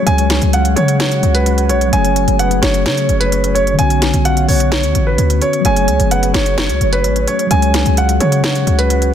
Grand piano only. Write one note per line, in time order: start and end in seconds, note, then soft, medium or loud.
0.06 0.50 G#5 loud
0.54 0.72 F#5 medium
0.76 0.95 C#5 medium
1.00 1.32 C#5 medium
1.35 1.67 B4 medium
1.69 1.88 C#5 medium
1.93 2.36 G#5 loud
2.39 2.58 F#5 medium
2.62 2.81 C#5 medium
2.86 3.19 C#5 medium
3.20 3.53 B4 medium
3.55 3.74 C#5 medium
3.79 4.22 G#5 loud
4.25 4.44 F#5 medium
4.48 4.67 C#5 medium
4.71 5.04 C#5 medium
5.07 5.40 B4 medium
5.42 5.60 C#5 medium
5.66 6.09 G#5 loud
6.11 6.30 F#5 medium
6.34 6.53 C#5 medium
6.58 6.91 C#5 loud
6.93 7.25 B4 medium
7.28 7.46 C#5 medium
7.51 7.94 G#5 loud
7.98 8.16 F#5 medium
8.20 8.39 C#5 medium
8.44 8.77 C#5 medium
8.79 9.11 B4 medium